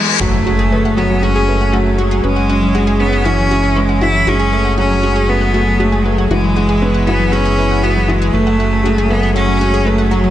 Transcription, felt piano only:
0, 0, Header, 1, 2, 480
1, 0, Start_track
1, 0, Key_signature, 3, "minor"
1, 0, Tempo, 508475
1, 192, Time_signature, 4, 2, 24, 8
1, 9726, End_track
2, 0, Start_track
2, 0, Title_t, "Felt piano"
2, 0, Program_c, 0, 0
2, 0, Control_c, 0, 64, 127
2, 0, Note_on_c, 0, 52, 105
2, 0, Note_on_c, 0, 56, 73
2, 0, Note_on_c, 0, 59, 104
2, 195, Note_on_c, 0, 54, 106
2, 202, Control_c, 0, 64, 0
2, 204, Note_off_c, 0, 52, 0
2, 208, Note_off_c, 0, 56, 0
2, 209, Note_off_c, 0, 59, 0
2, 330, Note_off_c, 0, 54, 0
2, 383, Control_c, 0, 64, 127
2, 436, Note_on_c, 0, 56, 75
2, 570, Note_off_c, 0, 56, 0
2, 670, Note_on_c, 0, 57, 99
2, 807, Note_off_c, 0, 57, 0
2, 919, Note_on_c, 0, 54, 97
2, 1052, Note_off_c, 0, 54, 0
2, 1156, Note_on_c, 0, 56, 87
2, 1382, Note_off_c, 0, 56, 0
2, 1402, Note_on_c, 0, 57, 102
2, 1533, Note_off_c, 0, 57, 0
2, 1637, Note_on_c, 0, 54, 98
2, 1771, Note_off_c, 0, 54, 0
2, 1883, Note_on_c, 0, 56, 94
2, 2105, Note_off_c, 0, 56, 0
2, 2118, Note_on_c, 0, 61, 104
2, 2125, Control_c, 0, 64, 0
2, 2300, Control_c, 0, 64, 127
2, 2343, Note_off_c, 0, 61, 0
2, 2362, Note_on_c, 0, 61, 97
2, 2585, Note_off_c, 0, 61, 0
2, 2598, Note_on_c, 0, 56, 102
2, 2823, Note_off_c, 0, 56, 0
2, 2838, Note_on_c, 0, 61, 93
2, 3063, Note_off_c, 0, 61, 0
2, 3076, Note_on_c, 0, 52, 90
2, 3210, Note_off_c, 0, 52, 0
2, 3315, Note_on_c, 0, 56, 82
2, 3450, Note_off_c, 0, 56, 0
2, 3560, Note_on_c, 0, 61, 104
2, 3692, Note_off_c, 0, 61, 0
2, 3798, Note_on_c, 0, 52, 97
2, 3931, Note_off_c, 0, 52, 0
2, 4037, Note_on_c, 0, 56, 106
2, 4043, Control_c, 0, 64, 0
2, 4237, Control_c, 0, 64, 127
2, 4262, Note_off_c, 0, 56, 0
2, 4271, Note_on_c, 0, 57, 101
2, 4408, Note_off_c, 0, 57, 0
2, 4517, Note_on_c, 0, 54, 107
2, 4651, Note_off_c, 0, 54, 0
2, 4753, Note_on_c, 0, 56, 102
2, 4980, Note_off_c, 0, 56, 0
2, 4993, Note_on_c, 0, 57, 93
2, 5214, Note_off_c, 0, 57, 0
2, 5228, Note_on_c, 0, 57, 110
2, 5458, Note_off_c, 0, 57, 0
2, 5473, Note_on_c, 0, 56, 104
2, 5700, Note_off_c, 0, 56, 0
2, 5716, Note_on_c, 0, 57, 98
2, 5942, Note_off_c, 0, 57, 0
2, 5957, Note_on_c, 0, 52, 110
2, 5962, Control_c, 0, 64, 0
2, 6091, Note_off_c, 0, 52, 0
2, 6113, Control_c, 0, 64, 127
2, 6200, Note_on_c, 0, 56, 77
2, 6332, Note_off_c, 0, 56, 0
2, 6439, Note_on_c, 0, 59, 97
2, 6572, Note_off_c, 0, 59, 0
2, 6683, Note_on_c, 0, 52, 99
2, 6814, Note_off_c, 0, 52, 0
2, 6917, Note_on_c, 0, 56, 92
2, 7142, Note_off_c, 0, 56, 0
2, 7161, Note_on_c, 0, 64, 81
2, 7384, Note_off_c, 0, 64, 0
2, 7400, Note_on_c, 0, 56, 77
2, 7624, Note_off_c, 0, 56, 0
2, 7632, Note_on_c, 0, 52, 97
2, 7860, Note_off_c, 0, 52, 0
2, 7870, Note_on_c, 0, 57, 100
2, 7882, Control_c, 0, 64, 0
2, 8039, Control_c, 0, 64, 127
2, 8094, Note_off_c, 0, 57, 0
2, 8108, Note_on_c, 0, 57, 101
2, 8338, Note_off_c, 0, 57, 0
2, 8345, Note_on_c, 0, 56, 102
2, 8576, Note_off_c, 0, 56, 0
2, 8582, Note_on_c, 0, 57, 99
2, 8815, Note_off_c, 0, 57, 0
2, 8822, Note_on_c, 0, 54, 91
2, 8964, Note_off_c, 0, 54, 0
2, 9061, Note_on_c, 0, 56, 85
2, 9203, Note_off_c, 0, 56, 0
2, 9301, Note_on_c, 0, 57, 104
2, 9443, Note_off_c, 0, 57, 0
2, 9542, Note_on_c, 0, 54, 102
2, 9683, Note_off_c, 0, 54, 0
2, 9726, End_track
0, 0, End_of_file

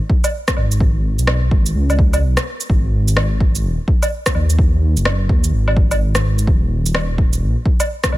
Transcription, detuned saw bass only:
0, 0, Header, 1, 2, 480
1, 0, Start_track
1, 0, Key_signature, 5, "minor"
1, 0, Tempo, 472441
1, 817, Time_signature, 4, 2, 24, 8
1, 8307, End_track
2, 0, Start_track
2, 0, Title_t, "Detuned saw bass"
2, 0, Program_c, 0, 39
2, 579, Note_on_c, 0, 32, 80
2, 1190, Note_off_c, 0, 32, 0
2, 1207, Note_on_c, 0, 35, 86
2, 1525, Note_off_c, 0, 35, 0
2, 1538, Note_on_c, 0, 32, 96
2, 1763, Note_off_c, 0, 32, 0
2, 1777, Note_on_c, 0, 37, 92
2, 2260, Note_on_c, 0, 35, 81
2, 2275, Note_off_c, 0, 37, 0
2, 2397, Note_off_c, 0, 35, 0
2, 2739, Note_on_c, 0, 32, 101
2, 3699, Note_on_c, 0, 27, 103
2, 3714, Note_off_c, 0, 32, 0
2, 3837, Note_off_c, 0, 27, 0
2, 4418, Note_on_c, 0, 39, 79
2, 5029, Note_off_c, 0, 39, 0
2, 5049, Note_on_c, 0, 30, 81
2, 5366, Note_off_c, 0, 30, 0
2, 5379, Note_on_c, 0, 39, 96
2, 5604, Note_off_c, 0, 39, 0
2, 5617, Note_on_c, 0, 32, 91
2, 6326, Note_off_c, 0, 32, 0
2, 6337, Note_on_c, 0, 32, 80
2, 6563, Note_off_c, 0, 32, 0
2, 6578, Note_on_c, 0, 27, 99
2, 7537, Note_on_c, 0, 34, 104
2, 7552, Note_off_c, 0, 27, 0
2, 7676, Note_off_c, 0, 34, 0
2, 8261, Note_on_c, 0, 34, 78
2, 8307, Note_off_c, 0, 34, 0
2, 8307, End_track
0, 0, End_of_file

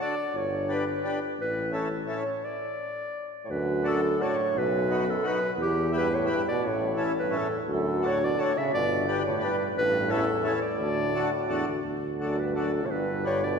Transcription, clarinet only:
0, 0, Header, 1, 2, 480
1, 0, Start_track
1, 0, Key_signature, 2, "major"
1, 0, Tempo, 351494
1, 455, Time_signature, 3, 2, 24, 8
1, 5734, Tempo, 346620
1, 14374, Tempo, 351906
1, 18675, End_track
2, 0, Start_track
2, 0, Title_t, "Clarinet"
2, 0, Program_c, 0, 71
2, 22, Note_on_c, 0, 74, 98
2, 505, Note_on_c, 0, 73, 86
2, 525, Note_off_c, 0, 74, 0
2, 998, Note_on_c, 0, 71, 89
2, 1019, Note_off_c, 0, 73, 0
2, 1679, Note_off_c, 0, 71, 0
2, 1929, Note_on_c, 0, 71, 93
2, 2348, Note_off_c, 0, 71, 0
2, 2381, Note_on_c, 0, 69, 79
2, 2703, Note_off_c, 0, 69, 0
2, 2854, Note_on_c, 0, 73, 81
2, 3336, Note_on_c, 0, 74, 75
2, 3357, Note_off_c, 0, 73, 0
2, 4543, Note_off_c, 0, 74, 0
2, 4704, Note_on_c, 0, 73, 59
2, 4792, Note_on_c, 0, 71, 96
2, 4812, Note_off_c, 0, 73, 0
2, 5266, Note_off_c, 0, 71, 0
2, 5294, Note_on_c, 0, 69, 100
2, 5760, Note_on_c, 0, 73, 96
2, 5781, Note_off_c, 0, 69, 0
2, 6262, Note_on_c, 0, 71, 106
2, 6283, Note_off_c, 0, 73, 0
2, 6985, Note_on_c, 0, 69, 91
2, 7005, Note_off_c, 0, 71, 0
2, 7221, Note_on_c, 0, 71, 102
2, 7242, Note_off_c, 0, 69, 0
2, 7553, Note_off_c, 0, 71, 0
2, 7700, Note_on_c, 0, 67, 100
2, 8116, Note_off_c, 0, 67, 0
2, 8188, Note_on_c, 0, 71, 113
2, 8429, Note_on_c, 0, 73, 91
2, 8450, Note_off_c, 0, 71, 0
2, 8631, Note_off_c, 0, 73, 0
2, 8650, Note_on_c, 0, 71, 93
2, 8851, Note_off_c, 0, 71, 0
2, 8898, Note_on_c, 0, 74, 97
2, 9124, Note_on_c, 0, 73, 90
2, 9144, Note_off_c, 0, 74, 0
2, 9583, Note_off_c, 0, 73, 0
2, 9877, Note_on_c, 0, 71, 88
2, 10131, Note_on_c, 0, 69, 94
2, 10152, Note_off_c, 0, 71, 0
2, 10460, Note_off_c, 0, 69, 0
2, 10608, Note_on_c, 0, 69, 89
2, 11089, Note_on_c, 0, 73, 107
2, 11110, Note_off_c, 0, 69, 0
2, 11337, Note_on_c, 0, 74, 95
2, 11358, Note_off_c, 0, 73, 0
2, 11552, Note_on_c, 0, 73, 109
2, 11573, Note_off_c, 0, 74, 0
2, 11793, Note_on_c, 0, 76, 96
2, 11813, Note_off_c, 0, 73, 0
2, 12008, Note_off_c, 0, 76, 0
2, 12023, Note_on_c, 0, 74, 119
2, 12452, Note_off_c, 0, 74, 0
2, 12747, Note_on_c, 0, 73, 79
2, 12949, Note_off_c, 0, 73, 0
2, 12990, Note_on_c, 0, 71, 92
2, 13302, Note_off_c, 0, 71, 0
2, 13462, Note_on_c, 0, 71, 125
2, 13921, Note_on_c, 0, 69, 107
2, 13942, Note_off_c, 0, 71, 0
2, 14386, Note_off_c, 0, 69, 0
2, 14405, Note_on_c, 0, 69, 104
2, 14506, Note_off_c, 0, 69, 0
2, 14622, Note_on_c, 0, 74, 102
2, 16008, Note_off_c, 0, 74, 0
2, 16804, Note_on_c, 0, 69, 78
2, 17039, Note_on_c, 0, 71, 75
2, 17060, Note_off_c, 0, 69, 0
2, 17266, Note_on_c, 0, 69, 77
2, 17287, Note_off_c, 0, 71, 0
2, 17669, Note_on_c, 0, 73, 76
2, 17690, Note_off_c, 0, 69, 0
2, 17740, Note_on_c, 0, 71, 96
2, 17760, Note_off_c, 0, 73, 0
2, 18218, Note_off_c, 0, 71, 0
2, 18229, Note_on_c, 0, 73, 104
2, 18465, Note_on_c, 0, 74, 88
2, 18486, Note_off_c, 0, 73, 0
2, 18675, Note_off_c, 0, 74, 0
2, 18675, End_track
0, 0, End_of_file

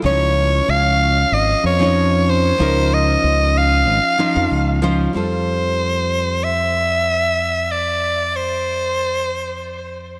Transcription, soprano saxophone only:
0, 0, Header, 1, 2, 480
1, 0, Start_track
1, 0, Tempo, 638298
1, 32, Time_signature, 4, 2, 24, 8
1, 7669, End_track
2, 0, Start_track
2, 0, Title_t, "Soprano saxophone"
2, 0, Program_c, 0, 64
2, 40, Note_on_c, 0, 73, 105
2, 524, Note_on_c, 0, 77, 110
2, 536, Note_off_c, 0, 73, 0
2, 1004, Note_on_c, 0, 75, 109
2, 1015, Note_off_c, 0, 77, 0
2, 1238, Note_off_c, 0, 75, 0
2, 1246, Note_on_c, 0, 73, 105
2, 1723, Note_on_c, 0, 72, 100
2, 1734, Note_off_c, 0, 73, 0
2, 2207, Note_on_c, 0, 75, 104
2, 2218, Note_off_c, 0, 72, 0
2, 2687, Note_on_c, 0, 77, 104
2, 2699, Note_off_c, 0, 75, 0
2, 3640, Note_off_c, 0, 77, 0
2, 3878, Note_on_c, 0, 72, 89
2, 4838, Note_on_c, 0, 76, 116
2, 4849, Note_off_c, 0, 72, 0
2, 5799, Note_on_c, 0, 74, 89
2, 5811, Note_off_c, 0, 76, 0
2, 6283, Note_on_c, 0, 72, 83
2, 6294, Note_off_c, 0, 74, 0
2, 7477, Note_off_c, 0, 72, 0
2, 7669, End_track
0, 0, End_of_file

